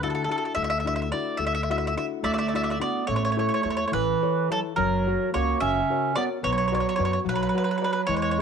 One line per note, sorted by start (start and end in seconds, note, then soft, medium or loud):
0.00 0.26 D2 medium
0.00 0.26 D3 medium
0.00 0.27 D4 medium
0.00 0.27 E4 soft
0.00 0.28 F#4 medium
0.00 0.09 A4 medium
0.10 0.14 A4 medium
0.15 0.22 A4 medium
0.24 0.30 A4 medium
0.28 0.74 D4 soft
0.28 0.74 E4 soft
0.28 0.74 F#4 soft
0.28 0.37 A4 medium
0.38 0.44 A4 medium
0.45 0.52 A4 soft
0.55 1.10 D2 medium
0.55 1.11 A3 medium
0.55 0.62 E5 medium
0.64 0.69 E5 medium
0.70 0.78 E5 medium
0.80 0.86 E5 medium
0.85 1.11 D4 soft
0.85 1.11 E4 soft
0.85 1.11 F#4 soft
0.85 0.94 E5 medium
0.96 1.01 E5 medium
1.02 1.09 E5 medium
1.12 1.58 D4 soft
1.12 1.58 E4 soft
1.12 1.58 F#4 soft
1.12 1.37 D5 medium
1.37 1.94 D2 medium
1.37 1.95 A3 medium
1.37 1.45 E5 medium
1.47 1.53 E5 medium
1.55 1.62 E5 medium
1.63 1.70 E5 medium
1.69 1.95 D4 soft
1.69 1.96 E4 soft
1.69 1.96 F#4 medium
1.69 1.77 E5 medium
1.78 1.85 E5 medium
1.87 1.93 E5 medium
1.96 2.42 D4 soft
1.96 2.43 E4 soft
1.96 2.43 F#4 soft
1.96 2.05 E5 medium
2.22 2.79 D2 medium
2.22 2.77 A3 medium
2.22 2.79 A3 medium
2.22 2.31 D5 medium
2.22 2.31 E5 medium
2.33 2.37 D5 soft
2.33 2.37 E5 medium
2.38 2.47 D5 medium
2.38 2.47 E5 medium
2.48 2.54 D5 soft
2.48 2.55 E5 soft
2.53 2.79 D4 soft
2.53 2.78 E4 soft
2.53 2.79 F#4 soft
2.53 2.62 D5 medium
2.53 2.63 E5 medium
2.63 2.69 D5 soft
2.63 2.70 E5 medium
2.70 2.78 D5 soft
2.70 2.78 E5 medium
2.80 3.06 B3 medium
2.80 3.02 D4 soft
2.80 3.02 E4 soft
2.80 3.02 F#4 soft
2.80 3.07 D5 medium
3.07 3.46 A1 medium
3.07 3.64 A3 medium
3.07 3.86 A3 medium
3.07 3.15 C#5 medium
3.16 3.23 C#5 medium
3.25 3.31 C#5 medium
3.32 3.38 C#5 soft
3.37 3.64 E4 soft
3.37 3.65 A4 soft
3.37 3.66 C#5 soft
3.37 3.47 C#5 medium
3.49 3.53 C#5 soft
3.54 3.62 C#5 medium
3.63 3.83 E2 medium
3.63 4.11 E4 soft
3.63 4.12 A4 soft
3.63 3.69 C#5 medium
3.67 4.13 C#5 soft
3.67 3.76 C#5 medium
3.77 3.84 C#5 medium
3.87 3.93 A3 medium
3.87 3.93 C#5 medium
3.92 4.13 A1 medium
3.92 4.48 E3 medium
3.92 4.47 E3 medium
3.92 4.46 B4 medium
4.22 4.49 E4 soft
4.22 4.50 A4 soft
4.22 4.50 C#5 medium
4.50 4.64 F#3 soft
4.50 4.72 E4 soft
4.50 4.72 A4 soft
4.50 4.59 A4 medium
4.50 4.73 C#5 soft
4.76 5.14 F#1 medium
4.76 5.32 F#3 medium
4.76 5.30 F#3 medium
4.76 5.29 A#4 medium
5.07 5.33 F#4 medium
5.07 5.34 A#4 soft
5.07 5.34 C#5 medium
5.33 5.52 C#2 medium
5.33 5.58 A#3 medium
5.33 5.79 F#4 soft
5.33 5.80 A#4 soft
5.33 5.60 C#5 medium
5.33 5.80 C#5 medium
5.60 5.80 F#1 medium
5.60 6.15 C#3 medium
5.60 6.13 C#4 medium
5.60 6.13 E5 medium
5.90 6.15 F#4 soft
5.90 6.16 A#4 soft
5.90 6.16 C#5 soft
6.16 6.29 B3 medium
6.16 6.38 F#4 soft
6.16 6.38 A#4 soft
6.16 6.38 C#5 medium
6.16 6.23 D5 medium
6.43 6.80 B1 medium
6.43 7.22 F#3 medium
6.43 6.97 B3 medium
6.43 6.51 C#5 medium
6.52 6.57 C#5 medium
6.58 6.66 C#5 medium
6.68 6.73 C#5 medium
6.72 6.97 F#4 soft
6.72 6.97 B4 soft
6.72 6.79 C#5 medium
6.72 6.98 D5 medium
6.80 6.88 C#5 medium
6.89 6.95 C#5 medium
6.96 7.17 F#2 medium
6.96 7.44 F#4 soft
6.96 7.43 B4 soft
6.96 7.03 C#5 medium
6.96 7.44 D5 medium
7.05 7.11 C#5 medium
7.13 7.19 C#5 medium
7.25 7.45 B1 medium
7.25 7.79 F#3 medium
7.25 8.05 F#3 medium
7.29 7.34 B4 medium
7.35 7.41 B4 medium
7.43 7.48 B4 medium
7.49 7.56 B4 medium
7.54 7.80 F#4 soft
7.54 7.81 B4 soft
7.54 7.63 B4 medium
7.54 7.81 D5 soft
7.64 7.70 B4 medium
7.71 7.77 B4 medium
7.78 8.03 F#4 soft
7.78 7.83 B4 soft
7.82 8.03 B4 soft
7.82 7.92 B4 medium
7.82 8.03 D5 soft
7.93 8.00 B4 medium
8.07 8.42 E2 medium
8.07 8.42 E3 medium
8.07 8.42 G#3 medium
8.07 8.15 C#5 medium
8.16 8.21 C#5 medium
8.22 8.30 C#5 medium
8.31 8.39 C#5 medium
8.37 8.42 C#4 soft
8.37 8.42 E4 soft
8.37 8.42 G#4 soft